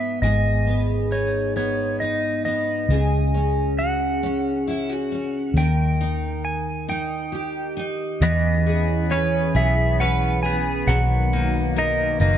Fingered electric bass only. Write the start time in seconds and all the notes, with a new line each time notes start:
Already playing: G#1
0.22 G#1
2.89 C#2
5.54 D#2
8.21 E2
9.55 B1
10.87 B1
12.20 F#1